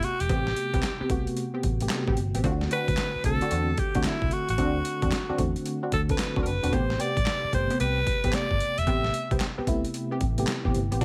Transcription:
Already playing: C3 A3 B3 F#4 G4
0.03 F#4, closed hi-hat
0.20 E1 G4, closed hi-hat
0.29 A1 C3 A3 B3 C4 G4, kick, closed hi-hat
0.47 snare
0.56 closed hi-hat
0.74 C2 B3 C4 G4, kick, closed hi-hat
0.83 snare, clap, closed hi-hat
1.00 B3 C4 G4, muted fingered electric bass stroke
1.10 C2 C3 A3 B3 F#4, kick, closed hi-hat
1.27 closed hi-hat
1.37 closed hi-hat
1.54 B3 C4 G4
1.63 A1, kick, closed hi-hat
1.80 C3 A3 B3 G4, closed hi-hat
1.89 snare, clap, closed hi-hat
2.07 A1 B3 C4 G4, kick
2.17 G1, closed hi-hat
2.34 A1 B3 C4 G4, closed hi-hat
2.44 D2 D3 A3 C4 D4 F4 F#4, kick, closed hi-hat
2.52 F#4
2.61 snare
2.71 C4 D4 F#4 B4, closed hi-hat
2.88 D2, kick, closed hi-hat
2.97 snare, clap, closed hi-hat
3.15 muted fingered electric bass stroke
3.24 C2 D3 A3 C4 A4, kick, closed hi-hat
3.41 C4 D4 F#4, closed hi-hat
3.51 E2 C4 D4 F#4, closed hi-hat
3.77 G4, kick, closed hi-hat
3.95 D2 D3 A3 C4 D4 F#4, kick, closed hi-hat
4.04 E4, muted fingered electric bass stroke, snare, clap, closed hi-hat
4.22 C2, kick
4.31 F#4, closed hi-hat
4.49 A1 F#4, closed hi-hat
4.58 D2 D3 A3 C4 D4 F#4, kick, closed hi-hat
4.85 closed hi-hat
5.02 E2 C4 D4 F#4, kick, closed hi-hat
5.12 snare, clap, closed hi-hat
5.29 C4 D4 F#4, muted fingered electric bass stroke
5.38 E2 D3 A3 C4 F#4, kick, closed hi-hat
5.56 closed hi-hat
5.66 closed hi-hat
5.83 C4 D4 F#4
5.92 D2 A4, kick, closed hi-hat
6.09 D3 A3 C4 A4 B4, kick, closed hi-hat
6.18 snare, clap, closed hi-hat
6.36 D2 C4 D4 F#4, kick
6.42 A#4, closed hi-hat
6.46 F#1 B4
6.63 E1 C4 D4 F#4, closed hi-hat
6.72 A1 B2 A3 B3 C4 G4 C5, kick, closed hi-hat
6.79 C3
6.90 snare
6.99 B3 C4 G4 D5, closed hi-hat
7.17 A1, kick, closed hi-hat
7.26 snare, clap, closed hi-hat
7.44 muted fingered electric bass stroke
7.53 G1 C3 A3 B3 G4 C5, kick, closed hi-hat
7.70 B3 C4 G4, closed hi-hat
7.80 C2 B3 C4 G4 B4, closed hi-hat
8.07 kick, closed hi-hat
8.24 A1 C3 A3 B3 C4 G4, kick, closed hi-hat
8.33 D5, muted fingered electric bass stroke, snare, clap, closed hi-hat
8.51 G1, kick
8.60 closed hi-hat
8.78 E1 E5, closed hi-hat
8.87 A1 C3 A3 B3 C4 G4, kick, closed hi-hat
9.04 snare
9.14 closed hi-hat
9.31 C2 B3 C4 G4, kick, closed hi-hat
9.40 snare, clap, closed hi-hat
9.58 B3 C4 G4, muted fingered electric bass stroke
9.67 C2 C3 A3 B3 E4, kick, closed hi-hat
9.85 closed hi-hat
9.94 closed hi-hat
10.11 B3 C4 G4
10.21 A1, kick, closed hi-hat
10.38 C3 A3 B3 G4, closed hi-hat
10.47 snare, clap, closed hi-hat
10.65 A1 B3 C4 G4, kick
10.74 G1, closed hi-hat
10.91 A1 B3 C4 G4, closed hi-hat
11.01 D2 D3 A3 C4 D4 F#4, kick, closed hi-hat

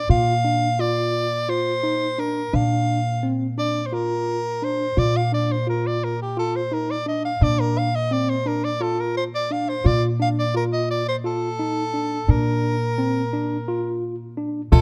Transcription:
0.09 A#2 F4 F5
0.44 D4
0.79 F4 D5
1.49 F4 C5
1.83 D#4
2.18 D4 A#4
2.53 A#2 D4 F5
3.23 C4
3.58 D4 D5
3.86 C5
3.93 F4 A#4
4.62 D4 C5
4.97 A#2 F4 D5
5.16 F5
5.32 D4 D5
5.52 C5
5.67 F4 A#4
5.87 D5
6.04 A#4
6.22 G4
6.37 F4 A4
6.56 C5
6.72 D#4 A#4
6.91 D5
7.06 D4 D#5
7.25 F5
7.41 A#2 D4 D5
7.61 A#4
7.78 F5
7.95 D#5
8.11 C4 D5
8.29 C5
8.46 D4 A#4
8.64 D5
8.81 F4 A4
8.99 A#4
9.17 C5
9.35 D5
9.51 D4 F5
9.69 C5
9.85 A#2 F4 D5
10.20 D4 F5
10.39 D5
10.55 F4 A#4
10.73 D#5
10.91 D5
11.08 C5
11.24 F4 A4
11.59 D#4
11.94 D4
12.28 A#2 D4 A#4
12.98 C4
13.33 D4
13.68 F4
14.37 D4
14.72 A#2 F4 A4, kick, crash

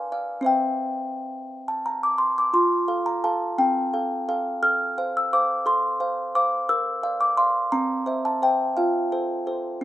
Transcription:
Already playing: G#5
0.12 D5 F5
0.41 C4 C5 E5
0.46 G5
1.68 A5
1.86 A#5
2.03 D6
2.18 C6
2.38 D6
2.53 F4 C6
2.88 A4 F5
3.06 A#5
3.24 A4 F5 A5
3.58 C4 G5
3.94 A4 F5
4.29 A4 F5
4.63 A4 F6
4.98 C5 F5
5.17 E6
5.33 C5 F5 D6
5.66 A4 C6
6.00 C5 F5
6.35 C5 F5 D6
6.69 A#4 E6
7.03 D5 F5
7.21 D6
7.37 D5 F5 C6
7.72 C4 A#5
8.06 C5 E5
8.25 A5
8.42 C5 E5 G5
8.77 F4 F5
9.12 A4 C5
9.47 A4 C5

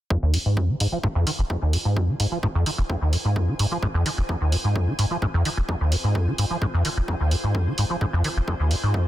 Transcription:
0.10 F2 F4, kick
0.22 D#2
0.30 G#2 C5, open hi-hat
0.46 G#2
0.57 F2, kick
0.69 F3 G#5
0.80 G#2, open hi-hat
0.92 F3
1.03 G#2, kick
1.15 F2
1.27 D#3, open hi-hat
1.39 F1
1.50 F2, kick
1.62 D#2
1.73 G#2, open hi-hat
1.85 G#2
1.96 F2, kick
2.08 F3
2.20 G#2, open hi-hat
2.32 F3
2.43 G#2, kick
2.55 F2
2.66 D#3, open hi-hat
2.78 F1
2.89 F2, kick
3.01 D#2
3.13 G#2, open hi-hat
3.25 G#2
3.36 F2, kick
3.48 F3
3.59 G#2, open hi-hat
3.71 F3
3.82 G#2, kick
3.94 F2
4.06 D#3, open hi-hat
4.18 F1
4.29 F2, kick
4.41 D#2
4.52 G#2, open hi-hat
4.64 G#2
4.75 F2, kick
4.87 F3
4.99 G#2, open hi-hat
5.11 F3
5.22 G#2, kick
5.34 F2
5.45 D#3, open hi-hat
5.57 F1
5.69 F2, kick
5.81 D#2
5.92 G#2, open hi-hat
6.04 G#2
6.15 F2, kick
6.27 F3
6.38 G#2, open hi-hat
6.50 F3
6.62 G#2, kick
6.74 F2
6.85 D#3, open hi-hat
6.97 F1
7.08 F2, kick
7.20 D#2
7.31 G#2, open hi-hat
7.44 G#2
7.55 F2, kick
7.67 F3
7.78 G#2, open hi-hat
7.90 F3
8.01 G#2, kick
8.13 F2 D#5
8.24 D#3, open hi-hat
8.36 F1
8.48 F2, kick
8.60 D#2
8.71 G#2, open hi-hat
8.83 G#2
8.94 F2, kick

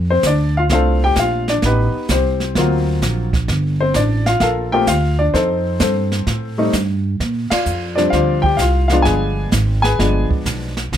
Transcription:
Already playing: F2
0.10 C4 C5
0.23 D2 D5, kick, snare, hi-hat pedal
0.29 D4
0.57 F4 F5
0.69 C2 A3 C4 D4 F4 F5, brush sweep, kick, snare
0.74 A4 C5
1.04 G4 G5
1.15 A#1 F5, kick, snare, hi-hat pedal
1.21 F4
1.48 D4 D5, snare
1.62 A1 B4, brush sweep, kick, snare
1.66 B3 D#4 G4
1.94 muted upright bass stroke
2.09 C2 C5, kick, snare, hi-hat pedal
2.13 C4 G4
2.40 snare
2.55 D2 F#3 A#3 C4 F4, brush sweep, kick, snare
3.02 A#1, kick, snare, hi-hat pedal
3.33 kick, snare
3.48 G1, brush sweep, kick, snare
3.80 C4 C5
3.94 A1 D5, kick, snare, hi-hat pedal
3.99 D4
4.26 F4 F5, snare
4.40 A#1 F4 A4 A#4 F5, brush sweep, kick, snare
4.72 A3 A#3 C4 F4 G4 G5
4.87 D2 F4 F5, kick, snare, hi-hat pedal
5.19 D4 D5
5.34 F2 C4 D#4 A4 C5, brush sweep, kick, snare
5.80 G2 C4 A4 C5, kick, snare, hi-hat pedal
6.12 snare
6.27 A2, brush sweep, kick, snare
6.58 G3 A3 C4 D#4
6.73 G2, kick, snare, hi-hat pedal
7.20 A#2, brush sweep, kick, snare
7.50 F4 D5 F5, muted upright bass stroke, snare, ride
7.66 F2, hi-hat pedal
7.95 F3 G3 C4 D4 D5, snare
8.10 D2 F4 C5 D5 F5, brush sweep, kick, snare
8.42 G4 G5, kick
8.57 C2 F5, kick, snare, hi-hat pedal
8.61 F4
8.88 F3 G#3 F5, snare
8.92 B3 D4 F4
9.02 G1 G#4 B4 F5 G#5, brush sweep, kick, snare
9.52 G#1, kick, snare, hi-hat pedal
9.82 G#4 B4 G#5, snare
9.99 G1 F3 G#3 B3 D4, brush sweep, kick, snare
10.31 kick
10.46 B1, kick, snare, hi-hat pedal
10.77 snare
10.92 C2, brush sweep, kick, snare

